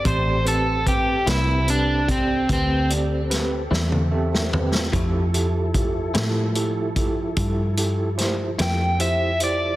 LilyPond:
<<
  \new Staff \with { instrumentName = "Overdriven electric guitar" } { \time 12/8 \key a \minor \tempo 4. = 49 c''8 a'8 g'8 e'8 d'8 c'8 c'8 r2 r8 | r1 r8 g''8 e''8 d''8 | }
  \new Staff \with { instrumentName = "Tine electric piano" } { \time 12/8 \key a \minor <c' g' d''>8 <c' g' b'>8 <c' g' b'>8 <c' g' b'>8 <c' g' b'>8 <c' g' d''>8 <c' g' b'>8 <c' g' d''>8 <c' g' b'>8 <c' g' a'>8 <c' g' a' e''>8 <c' g' b' g''>8 | <e' g' a'>8 <e' g' a'>8 <e' g' a'>8 <e' g' a'>8 <e' g' a'>8 <e' g' a'>8 <e' g' a'>8 <e' g' a'>8 <e' g' c''>8 <e' g' a'>8 <e' g' c''>8 <e' g' c''>8 | }
  \new Staff \with { instrumentName = "Tonewheel organ" } { \time 12/8 \key a \minor <c' g' a'>1. | <f e' a'>1. | }
  \new Staff \with { instrumentName = "Clean electric guitar" } { \time 12/8 \key a \minor r4. <a, g c' e'>8 r2 r8 <a, g c' e'>8 r4 | <f a c' e'>8 r4 <f a c' e'>8 r2 r8 <f a c' e'>8 r4 | }
  \new Staff \with { instrumentName = "Fingered electric bass" } { \clef bass \time 12/8 \key a \minor a,,4. c,4. d,4. e,4. | f,4. a,4. g,4. f,4. | }
  \new DrumStaff \with { instrumentName = "Drums" } \drummode { \time 12/8 <hh bd>8 hh8 <hh bd>8 <hh sn>8 hh8 <hh bd>8 <hh bd>8 hh8 <hh sn>8 sn16 tommh8 sn16 tomfh16 sn16 | <hh bd>8 hh8 <hh bd>8 <hh sn>8 hh8 <hh bd>8 <hh bd>8 hh8 <hh sn>8 <hh sn>8 hh8 hh8 | }
>>